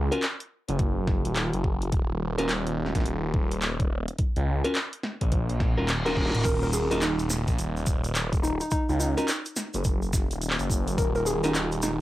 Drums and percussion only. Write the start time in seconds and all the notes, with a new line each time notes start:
0.12 closed hi-hat
0.23 clap, closed hi-hat
0.40 closed hi-hat
0.69 closed hi-hat
0.79 kick, closed hi-hat
1.07 kick, snare
1.25 closed hi-hat
1.36 clap, closed hi-hat
1.53 closed hi-hat
1.64 kick
1.82 closed hi-hat
1.92 kick, closed hi-hat
2.38 closed hi-hat
2.49 clap, closed hi-hat
2.67 closed hi-hat
2.86 snare
2.95 kick, snare, closed hi-hat
3.00 snare
3.06 closed hi-hat
3.34 kick
3.51 closed hi-hat
3.62 clap, closed hi-hat
3.80 kick, closed hi-hat
4.08 closed hi-hat
4.19 kick, closed hi-hat
4.36 closed hi-hat
4.64 closed hi-hat
4.75 clap, closed hi-hat
4.93 closed hi-hat
5.03 snare
5.21 kick, closed hi-hat
5.32 kick, closed hi-hat
5.50 closed hi-hat
5.60 kick, snare
5.89 clap, closed hi-hat
6.06 snare, closed hi-hat
6.17 kick, snare
6.21 snare
6.26 snare
6.30 snare
6.35 closed hi-hat, mid tom
6.45 kick, closed hi-hat, crash, shaker
6.63 shaker
6.73 shaker
6.91 closed hi-hat, shaker
7.02 clap, closed hi-hat, shaker
7.19 closed hi-hat, shaker
7.30 snare, shaker
7.48 kick, closed hi-hat, shaker
7.58 closed hi-hat, shaker
7.77 shaker
7.86 kick, shaker
8.04 closed hi-hat, shaker
8.15 clap, closed hi-hat, shaker
8.33 kick, closed hi-hat, shaker
8.44 shaker
8.60 closed hi-hat, shaker
8.71 kick, closed hi-hat, shaker
8.89 shaker
9.00 shaker
9.18 closed hi-hat, shaker
9.28 clap, closed hi-hat, shaker
9.46 closed hi-hat, shaker
9.56 snare, shaker
9.74 closed hi-hat, shaker
9.84 kick, closed hi-hat, shaker
10.02 shaker
10.13 kick, snare, shaker
10.31 closed hi-hat, shaker
10.42 closed hi-hat, shaker
10.50 clap
10.59 closed hi-hat, shaker
10.70 kick, shaker
10.88 closed hi-hat, shaker
10.98 kick, closed hi-hat, shaker
11.15 shaker
11.26 shaker
11.44 closed hi-hat, shaker
11.55 clap, closed hi-hat, shaker
11.72 closed hi-hat, shaker
11.82 snare, shaker